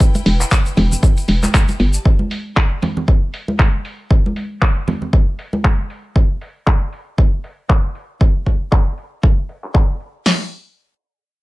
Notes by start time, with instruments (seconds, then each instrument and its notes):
Already playing: string section E4 B4 G5
0.00 kick, closed hi-hat, shaker
0.15 closed hi-hat, muted conga, high conga, shaker
0.26 fm bass E1, open hi-hat
0.41 clap, shaker
0.51 kick, clap, closed hi-hat, shaker
0.66 closed hi-hat, shaker
0.77 fm bass E1, open hi-hat, high conga, low conga
0.92 closed hi-hat, low conga, shaker
1.03 kick, closed hi-hat, shaker
1.17 closed hi-hat, shaker
1.28 fm bass E1, open hi-hat, muted conga
1.43 clap, closed hi-hat, muted conga, high conga, shaker
1.54 kick, clap, closed hi-hat, shaker
1.68 closed hi-hat, muted conga, shaker
1.80 fm bass G1, string section G4, open hi-hat
1.93 string section D5 A5, closed hi-hat, shaker
2.05 kick
2.19 high conga
2.31 open hi-hat
2.57 kick, clap
2.82 open hi-hat, high conga, low conga
2.97 low conga
3.08 kick
3.34 open hi-hat
3.48 high conga
3.59 kick, clap
3.85 open hi-hat
4.11 kick
4.26 high conga
4.36 open hi-hat
4.62 kick, clap
4.87 open hi-hat, high conga, low conga
5.02 low conga
5.13 kick
5.39 open hi-hat
5.53 high conga
5.64 kick, clap
5.90 open hi-hat
6.16 kick
6.41 open hi-hat
6.67 kick, clap
6.93 open hi-hat
7.18 kick
7.44 open hi-hat
7.70 kick, clap
7.95 open hi-hat
8.21 kick
8.46 kick, open hi-hat
8.72 kick, clap
8.98 open hi-hat
9.23 kick
9.49 open hi-hat
9.64 clap
9.75 kick, clap
10.00 open hi-hat
10.26 snare, open hi-hat